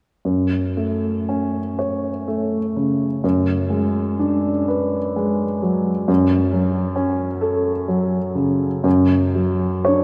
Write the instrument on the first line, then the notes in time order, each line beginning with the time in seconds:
grand piano
0.25 F#2
0.77 A3
1.29 C#4
1.79 C#5
2.28 A3
2.76 C#3
3.24 F#2
3.70 G#3
4.19 D4
4.68 B4
5.16 G#3
5.62 F#3
6.08 F#2
6.53 F#3
6.96 C#4
7.41 A4
7.88 F#3
8.35 C#3
8.84 F#2
9.35 F#3
9.85 D4 C#5